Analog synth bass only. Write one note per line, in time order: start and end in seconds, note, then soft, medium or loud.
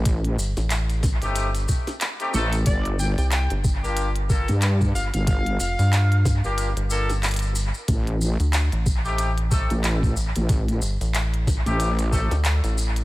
0.38 0.54 G1 loud
0.57 1.19 A1 medium
1.22 1.66 G1 medium
3.18 3.48 C2 loud
3.51 4.46 G1 loud
4.95 5.11 G1 loud
5.60 5.76 F1 medium
5.79 6.41 G2 medium
6.44 6.74 G1 medium
6.76 7.71 G1 loud
8.40 8.69 D2 medium
8.72 9.67 A1 loud
10.16 10.33 A1 loud
10.82 10.98 G1 loud
11.01 11.63 A1 medium
12.31 12.61 D2 medium
12.64 13.04 A1 loud